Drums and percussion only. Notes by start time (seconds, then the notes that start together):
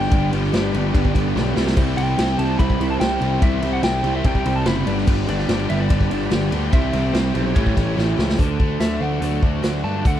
0.02 snare
0.11 kick, ride
0.33 ride
0.44 snare
0.54 snare, ride
0.74 ride
0.95 kick, ride
1.05 kick
1.15 kick, ride
1.36 snare
1.56 snare
1.67 snare
1.77 kick, crash
1.98 ride
2.19 snare, ride
2.39 ride
2.60 kick, ride
2.70 kick
2.81 ride
3.01 snare, ride
3.21 ride
3.42 kick, ride
3.62 ride
3.83 snare, ride
4.04 ride
4.24 kick, ride
4.35 kick
4.46 ride
4.66 snare, ride
4.87 ride
4.98 snare
5.07 kick, crash
5.28 ride
5.39 snare
5.49 snare, ride
5.70 ride
5.90 kick, ride
6.01 kick
6.11 ride
6.31 snare, ride
6.52 ride
6.73 kick, ride
6.93 ride
7.15 snare, ride
7.35 ride
7.56 kick, ride
7.66 kick
7.77 kick, ride
7.99 snare
8.19 snare
8.29 snare
8.39 kick, closed hi-hat
8.60 kick
8.80 snare, closed hi-hat
9.22 closed hi-hat
9.43 kick
9.63 snare, closed hi-hat
10.05 kick, closed hi-hat
10.16 snare